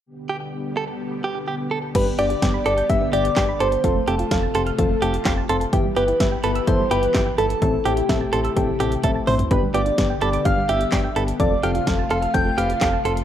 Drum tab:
CC |----------------|x---------------|----------------|----------------|
HH |----------------|x-xxx-xxx-xxx-xx|x-xxx-xxx-xxx-xx|x-xxx-xxx-xxx-xx|
CP |----------------|------------x---|------------x---|------------x---|
SD |----------------|----o-------o---|----o-------o---|----o-------o---|
T1 |----------------|----------------|----------------|----------------|
T2 |----------------|----------------|----------------|----------------|
FT |----------------|----------------|----------------|----------------|
BD |----------------|o---o---o---o---|o---o---o---o---|o---o---o---o---|

CC |----------------|----------------|----------------|
HH |x-xxx-xxx-xxx-ox|x-xxx-xxx-xxx-xx|x-xxx-xxx-xxx-xx|
CP |----------------|------------x---|------------x---|
SD |----o-----------|----o-------o---|----o-------o---|
T1 |------------o---|----------------|----------------|
T2 |--------------o-|----------------|----------------|
FT |---------------o|----------------|----------------|
BD |o---o---o---o---|o---o---o---o---|o---o---o---o---|